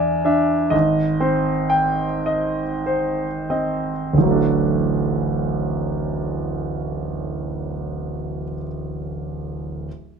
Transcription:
grand piano
Already playing: E2 D4 D5 E5 G#5
0.25 D4 E5
0.70 G#1 D#5
1.20 C4 C5
1.70 G5
2.26 D#5
2.86 C5
3.50 C4 D#5
4.13 D1
4.18 A1
4.22 F#3
4.27 A3
4.31 D4
4.35 F#4

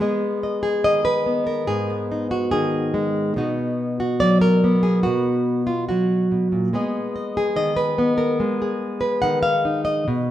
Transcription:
nylon-string guitar
0.00 G#3 B3 G#4 D#5
0.43 D#5
0.63 G#4
0.84 D#3 D#5
1.05 B4
1.26 B3
1.47 A#4
1.67 G#2 G#4
1.90 B3
2.12 D#4
2.31 F#4
2.51 D#3 G#4
2.94 G#3
3.36 B2 B3 D#4 F#4
4.00 F#4
4.20 F#3 D5
4.41 A#4
4.64 B3
4.83 G#4
5.03 B2 F#4
5.67 F4
5.89 F#3 F#4
6.32 B2
6.52 A#2
6.73 G#3 B3 G#4 D#5
7.16 D#5
7.37 G#4
7.56 D#3 D#5
7.77 B4
7.98 B3
8.18 A#4
8.40 G#3
8.62 G#4
9.01 B4
9.22 D#3 F#5
9.43 F5
9.65 D#4
9.85 D#5
10.08 B2

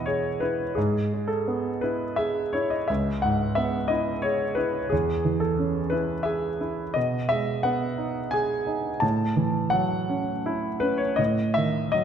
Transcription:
grand piano
Already playing: E2 B2 B3 E4 D#5 E5 F#5
0.06 G#4 C#5
0.40 E4 B4
0.75 G#2 G#4
1.13 G#3
1.28 A4
1.48 B3
1.81 E4 B4
2.16 G#4 E5
2.53 E4 C#5
2.70 D#5
2.88 C#2 E5
3.22 G#2 F#5
3.55 B3 E5
3.88 E4 D#5
4.22 G#4 C#5
4.55 E4 B4
4.90 E2 G#4
5.25 E3
5.40 A4
5.59 C#4
5.90 E4 B4
6.23 G#4 E5
6.61 E4
6.94 B2 D#5
7.29 G#3 E5
7.63 B3 F#5
7.98 D#4
8.31 G#4 G#5
8.67 D#4
9.00 A2 A5
9.36 E3
9.70 F#3 F#5
10.09 C#4
10.46 E4
10.80 C#4 B4
10.98 C#5
11.16 A2 D#5
11.54 D#3 E5
11.92 F#3 D#5

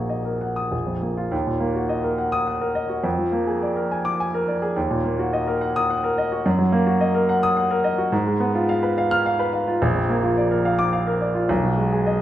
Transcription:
grand piano
Already playing: A#1 A#2 A#3 F#4
0.09 D#5
0.25 A#4
0.41 F#5
0.56 D#6
0.72 A#1
0.87 F2
1.02 A#3
1.17 F4
1.31 D#2
1.47 A#2
1.60 A#3
1.75 F#4
1.89 D#5
2.04 A#4
2.18 F#5
2.32 D#6
2.47 F#5
2.61 A#4
2.75 D#5
2.89 F#4
3.04 F2
3.19 F3
3.32 A#3
3.47 G#4
3.63 D5
3.76 A#4
3.91 G#5
4.05 D6
4.20 G#5
4.34 A#4
4.48 D5
4.62 G#4
4.76 D#2
4.91 A#2
5.04 A#3
5.19 F#4
5.33 D#5
5.47 A#4
5.61 F#5
5.76 D#6
5.90 F#5
6.04 A#4
6.18 D#5
6.32 F#4
6.46 F#2
6.59 F#3
6.72 A#3
6.87 F#4
7.01 D#5
7.15 A#4
7.29 F#5
7.43 D#6
7.57 F#5
7.71 A#4
7.84 D#5
7.98 F#4
8.12 G#2
8.27 G#3
8.40 B3
8.55 F4
8.69 F5
8.83 B4
8.98 F5
9.11 F6
9.26 F5
9.39 B4
9.53 F5
9.68 F4
9.82 A#1
9.95 F2
10.10 A#3
10.23 F4
10.37 D5
10.51 A#4
10.65 F5
10.79 D6
10.93 F5
11.07 A#4
11.21 D5
11.35 F4
11.49 B1
11.64 B2
11.78 G#3
11.92 G#4
12.06 D#5

